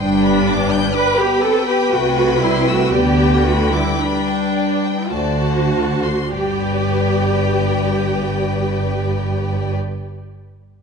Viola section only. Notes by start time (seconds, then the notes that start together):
0.00 D4
0.94 B4
1.19 G4
1.43 A4
1.67 G4
1.92 F#4
2.41 E4
2.68 F#4
2.92 G4
3.44 F#4
3.71 E4
3.98 D4
5.12 F#4
6.34 G4